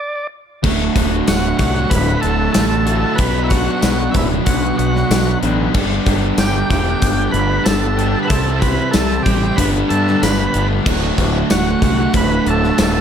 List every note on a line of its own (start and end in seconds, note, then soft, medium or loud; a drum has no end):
0.00 0.27 D5 medium
0.63 0.88 D1 medium
0.63 1.26 D2 medium
0.63 0.93 A2 loud
0.63 0.94 D3 medium
0.63 3.17 F#3 medium
0.63 0.95 A3 loud
0.63 3.17 D4 medium
0.63 0.96 F#4 loud
0.63 3.17 A4 medium
0.63 kick loud
0.63 crash loud
0.94 1.20 D1 medium
0.94 1.27 A2 medium
0.94 1.27 D3 medium
0.94 1.27 A3 medium
0.94 1.29 F#4 medium
0.94 kick medium
0.94 closed hi-hat medium
1.27 1.52 D1 medium
1.27 1.91 D2 medium
1.27 1.57 A2 loud
1.27 1.59 D3 medium
1.27 1.59 A3 loud
1.27 1.57 F#4 medium
1.27 1.60 F#4 loud
1.27 1.57 F#5 medium
1.27 snare loud
1.27 closed hi-hat loud
1.27 tambourine loud
1.58 1.84 C2 medium
1.58 2.07 A2 medium
1.58 1.75 D3 medium
1.58 1.75 A3 medium
1.58 1.92 F#4 medium
1.58 1.74 F#4 medium
1.58 1.89 F#5 medium
1.58 kick medium
1.58 closed hi-hat medium
1.63 3.18 D2 medium
1.75 2.07 D3 medium
1.75 2.06 A3 medium
1.75 2.05 F#4 medium
1.90 2.15 D1 loud
1.90 2.20 B4 loud
1.90 2.21 B5 loud
1.90 kick medium
1.90 closed hi-hat loud
2.06 2.22 D3 medium
2.06 2.22 A3 medium
2.06 2.23 F#4 medium
2.21 2.47 D1 medium
2.21 2.55 A2 medium
2.21 2.41 D3 medium
2.21 2.40 A3 medium
2.21 2.38 F#4 medium
2.21 2.51 A4 medium
2.21 2.52 A5 medium
2.21 closed hi-hat medium
2.40 2.55 D3 medium
2.40 2.56 A3 medium
2.40 2.56 F#4 medium
2.53 3.04 A1 medium
2.53 3.03 D2 medium
2.53 2.85 A2 loud
2.53 2.72 D3 medium
2.53 3.20 A4 loud
2.53 3.14 A5 medium
2.53 snare loud
2.53 closed hi-hat loud
2.53 tambourine loud
2.57 2.70 A3 loud
2.57 2.70 F#4 loud
2.71 2.85 D3 medium
2.71 2.86 A3 medium
2.71 2.87 F#4 medium
2.86 3.17 D2 medium
2.86 3.17 A2 medium
2.86 3.04 D3 medium
2.86 3.03 A3 medium
2.86 3.02 F#4 medium
2.86 closed hi-hat medium
3.03 3.18 D3 medium
3.03 3.18 A3 medium
3.03 3.17 F#4 medium
3.15 3.67 B1 medium
3.15 3.81 B2 medium
3.15 3.82 F#3 medium
3.15 5.72 F#3 medium
3.15 3.50 B3 medium
3.15 5.72 D4 medium
3.15 3.50 F#4 loud
3.15 3.43 B4 loud
3.15 3.41 B5 medium
3.15 kick loud
3.15 closed hi-hat medium
3.20 3.50 D4 medium
3.20 5.72 B4 medium
3.20 3.52 B4 loud
3.44 3.51 E4 medium
3.44 3.48 E5 medium
3.49 3.83 B3 medium
3.49 3.83 D4 medium
3.49 4.16 F#4 medium
3.49 3.83 F#4 medium
3.49 3.84 B4 medium
3.49 4.10 F#5 medium
3.49 kick medium
3.49 closed hi-hat medium
3.82 4.07 B1 medium
3.82 4.47 B2 medium
3.82 4.47 F#3 medium
3.82 4.14 B3 loud
3.82 4.15 D4 loud
3.82 4.15 F#4 loud
3.82 4.16 B4 loud
3.82 snare loud
3.82 closed hi-hat loud
3.82 tambourine loud
4.11 4.39 D1 loud
4.11 4.32 B3 medium
4.11 4.29 E4 medium
4.11 4.21 E5 medium
4.11 kick medium
4.11 closed hi-hat medium
4.15 5.74 B2 medium
4.15 5.73 F#3 medium
4.15 4.31 D4 medium
4.15 4.30 F#4 medium
4.15 4.29 B4 medium
4.30 4.63 B3 medium
4.30 4.63 D4 medium
4.30 4.62 F#4 medium
4.30 4.61 B4 medium
4.46 4.71 B1 medium
4.46 4.76 F#4 medium
4.46 4.76 F#5 medium
4.46 kick medium
4.46 closed hi-hat loud
4.63 4.76 B3 medium
4.63 4.77 D4 medium
4.63 4.78 F#4 medium
4.63 4.79 B4 medium
4.78 5.03 B1 medium
4.78 4.95 B3 medium
4.78 4.94 D4 medium
4.78 5.39 F#4 medium
4.78 4.94 F#4 medium
4.78 4.93 B4 medium
4.78 5.39 F#5 medium
4.78 closed hi-hat medium
4.94 5.10 B3 soft
4.94 5.10 D4 medium
4.94 5.10 F#4 medium
4.94 5.11 B4 medium
4.94 snare soft
5.10 5.34 B1 loud
5.10 5.58 B2 loud
5.10 5.59 F#3 medium
5.10 5.26 B3 loud
5.10 5.25 D4 loud
5.10 5.25 F#4 loud
5.10 5.24 B4 loud
5.10 snare loud
5.10 closed hi-hat loud
5.10 tambourine loud
5.25 5.40 B3 medium
5.25 5.41 D4 medium
5.25 5.42 F#4 medium
5.25 5.43 B4 medium
5.41 5.67 A1 loud
5.41 5.74 B2 medium
5.41 5.74 F#3 medium
5.41 5.58 B3 medium
5.41 5.58 D4 medium
5.41 5.57 F#4 medium
5.41 5.57 B4 medium
5.41 closed hi-hat medium
5.58 5.73 B3 medium
5.58 5.73 D4 medium
5.58 5.73 F#4 medium
5.58 5.72 B4 medium
5.74 5.99 G1 loud
5.74 6.37 G2 medium
5.74 6.37 D3 medium
5.74 6.05 G3 loud
5.74 8.28 G3 medium
5.74 8.28 B3 medium
5.74 6.06 B3 medium
5.74 6.06 D4 loud
5.74 6.08 G4 loud
5.74 8.28 A4 medium
5.74 kick loud
5.74 crash loud
6.06 6.30 G1 medium
6.06 6.38 G3 medium
6.06 6.38 B3 medium
6.06 6.38 D4 medium
6.06 6.39 G4 medium
6.06 kick medium
6.06 closed hi-hat medium
6.38 6.62 G1 medium
6.38 7.02 G2 medium
6.38 7.02 D3 medium
6.38 6.70 G3 loud
6.38 6.70 B3 loud
6.38 6.70 D4 loud
6.38 6.70 G4 medium
6.38 6.71 G4 loud
6.38 6.69 G5 medium
6.38 snare loud
6.38 closed hi-hat medium
6.38 tambourine loud
6.70 6.94 E1 medium
6.70 8.29 D3 medium
6.70 6.87 G3 medium
6.70 6.87 B3 medium
6.70 6.86 D4 medium
6.70 7.31 G4 medium
6.70 6.85 G4 medium
6.70 7.30 G5 medium
6.70 kick medium
6.70 closed hi-hat medium
6.74 8.29 G2 medium
6.86 7.19 G3 medium
6.86 7.18 B3 medium
6.86 7.18 D4 medium
6.86 7.17 G4 medium
7.02 7.26 G1 loud
7.02 kick medium
7.02 closed hi-hat loud
7.18 7.34 G3 medium
7.18 7.34 B3 medium
7.18 7.35 D4 medium
7.18 7.35 G4 medium
7.31 7.58 G1 medium
7.31 7.52 G3 medium
7.31 7.66 B4 loud
7.31 7.63 B5 medium
7.31 closed hi-hat medium
7.35 7.51 B3 medium
7.35 7.51 D4 medium
7.35 7.50 G4 loud
7.51 7.66 G3 medium
7.51 7.66 B3 medium
7.51 7.66 D4 medium
7.51 7.67 G4 medium
7.64 8.14 G1 medium
7.64 8.14 G2 loud
7.64 8.14 D3 medium
7.64 7.82 G3 medium
7.64 7.82 B3 loud
7.64 7.82 D4 loud
7.64 7.81 G4 loud
7.64 8.19 A4 loud
7.64 8.18 A5 medium
7.64 snare loud
7.64 closed hi-hat medium
7.64 tambourine loud
7.82 7.97 G3 medium
7.82 7.97 B3 medium
7.82 7.98 D4 medium
7.82 7.99 G4 medium
7.98 8.28 G2 medium
7.98 8.29 D3 medium
7.98 8.14 G3 medium
7.98 8.14 B3 medium
7.98 8.13 D4 medium
7.98 8.12 G4 medium
7.98 closed hi-hat medium
8.14 8.29 G3 medium
8.14 8.29 B3 medium
8.14 8.29 D4 medium
8.14 8.28 G4 medium
8.23 8.31 B4 medium
8.23 8.27 B5 medium
8.27 8.78 C2 medium
8.27 8.92 C3 medium
8.27 8.93 G3 loud
8.27 8.60 C4 medium
8.27 8.61 E4 loud
8.27 8.62 A4 loud
8.27 8.59 A5 medium
8.27 kick loud
8.27 closed hi-hat loud
8.32 9.58 E3 medium
8.32 9.58 C4 medium
8.32 8.62 G4 medium
8.32 9.58 G4 medium
8.32 8.62 C5 loud
8.60 8.94 C4 medium
8.60 8.93 E4 medium
8.60 8.94 G4 medium
8.60 8.95 B4 medium
8.60 8.94 C5 medium
8.60 8.91 B5 medium
8.60 kick medium
8.60 closed hi-hat medium
8.91 9.18 C2 medium
8.91 9.56 C3 loud
8.91 9.56 G3 medium
8.91 9.25 C4 loud
8.91 9.25 E4 loud
8.91 9.26 G4 loud
8.91 9.23 A4 loud
8.91 9.23 A5 medium
8.91 snare loud
8.91 closed hi-hat loud
8.91 tambourine loud
8.95 9.27 C5 loud
9.11 snare soft
9.23 9.50 A1 medium
9.23 9.42 C4 medium
9.23 9.42 E4 medium
9.23 9.58 G4 medium
9.23 9.55 G5 medium
9.23 kick medium
9.23 closed hi-hat medium
9.27 9.57 C3 medium
9.27 9.57 G3 medium
9.27 9.41 G4 medium
9.27 9.40 C5 medium
9.41 9.57 C4 medium
9.41 9.57 E4 medium
9.41 9.57 G4 medium
9.41 9.56 C5 medium
9.56 9.82 G1 medium
9.56 10.06 G2 loud
9.56 10.07 D3 loud
9.56 10.85 G3 medium
9.56 9.75 G3 loud
9.56 10.85 B3 medium
9.56 9.74 B3 loud
9.56 10.85 A4 medium
9.56 9.71 B4 medium
9.56 9.65 B5 medium
9.56 kick medium
9.56 closed hi-hat loud
9.60 9.75 D4 loud
9.60 9.73 G4 loud
9.74 9.89 G3 medium
9.74 9.90 B3 medium
9.74 9.92 D4 medium
9.74 9.91 G4 medium
9.89 10.15 G2 medium
9.89 10.08 G3 medium
9.89 10.07 B3 medium
9.89 10.08 D4 medium
9.89 10.06 G4 medium
9.89 10.23 A4 medium
9.89 10.20 A5 medium
9.89 closed hi-hat medium
10.07 10.22 G3 medium
10.07 10.22 B3 medium
10.07 10.24 D4 medium
10.07 10.23 G4 medium
10.07 snare soft
10.22 10.47 G1 medium
10.22 10.70 G2 medium
10.22 10.71 D3 medium
10.22 10.39 G3 loud
10.22 10.39 B3 medium
10.22 10.39 D4 medium
10.22 10.37 G4 loud
10.22 10.68 B4 medium
10.22 10.67 B5 medium
10.22 snare loud
10.22 closed hi-hat loud
10.22 tambourine loud
10.39 10.54 G3 medium
10.39 10.55 B3 medium
10.39 10.56 D4 medium
10.39 10.56 G4 medium
10.54 10.79 G1 medium
10.54 10.85 G2 medium
10.54 10.85 D3 medium
10.54 10.71 G3 medium
10.54 10.71 B3 medium
10.54 10.71 D4 medium
10.54 10.69 G4 medium
10.54 closed hi-hat medium
10.70 10.86 G3 medium
10.70 10.85 B3 medium
10.70 13.01 D4 medium
10.70 10.85 G4 medium
10.86 11.10 D1 medium
10.86 11.49 D2 medium
10.86 11.17 A2 medium
10.86 11.18 D3 medium
10.86 13.01 F#3 medium
10.86 11.19 A3 loud
10.86 13.01 D4 medium
10.86 11.20 F#4 loud
10.86 13.01 A4 medium
10.86 kick loud
10.86 crash loud
11.18 11.42 D1 loud
11.18 11.50 A2 medium
11.18 11.50 D3 medium
11.18 11.50 A3 medium
11.18 11.51 F#4 medium
11.18 kick medium
11.18 closed hi-hat medium
11.50 11.74 D1 medium
11.50 12.14 D2 medium
11.50 11.81 A2 loud
11.50 11.82 D3 loud
11.50 11.82 A3 loud
11.50 11.83 F#4 loud
11.50 11.84 F#4 loud
11.50 11.80 F#5 medium
11.50 snare loud
11.50 closed hi-hat medium
11.50 tambourine loud
11.82 12.06 C2 loud
11.82 13.01 D2 medium
11.82 12.31 A2 medium
11.82 11.98 D3 medium
11.82 11.97 A3 medium
11.82 12.13 F#4 medium
11.82 11.96 F#4 medium
11.82 12.12 F#5 medium
11.82 kick medium
11.82 closed hi-hat medium
11.97 12.30 D3 medium
11.97 12.29 A3 medium
11.97 12.28 F#4 medium
12.14 12.38 D1 loud
12.14 12.49 B4 loud
12.14 12.45 B5 loud
12.14 kick medium
12.14 closed hi-hat medium
12.29 12.44 D3 medium
12.29 12.45 A3 medium
12.29 12.45 F#4 medium
12.45 12.70 D1 medium
12.45 12.77 A2 medium
12.45 12.63 D3 medium
12.45 12.62 A3 medium
12.45 12.61 F#4 medium
12.45 12.77 A5 medium
12.45 closed hi-hat medium
12.50 12.78 A4 loud
12.62 12.77 D3 medium
12.62 12.78 A3 medium
12.62 12.78 F#4 medium
12.62 snare soft
12.77 13.01 D1 loud
12.77 13.01 D2 loud
12.77 13.01 A2 loud
12.77 12.94 D3 medium
12.77 12.93 A3 loud
12.77 12.92 F#4 medium
12.77 13.01 A4 loud
12.77 13.01 A5 medium
12.77 snare loud
12.77 closed hi-hat medium
12.77 tambourine loud
12.93 13.01 D3 medium
12.93 13.01 A3 medium
12.93 13.01 F#4 medium